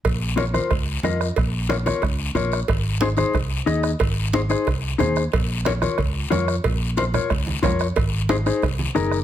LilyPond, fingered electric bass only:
\new Staff \with { instrumentName = "Fingered electric bass" } { \clef bass \time 4/4 \key bes \minor \tempo 4 = 182 bes,,2 des,4 f,4 | bes,,2 des,4 bes,,4 | aes,,2 c,4 ees,4 | aes,,2 c,4 ees,4 |
bes,,2 des,4 f,4 | bes,,2 des,4 f,4 | aes,,2 c,4 ges,,4 | }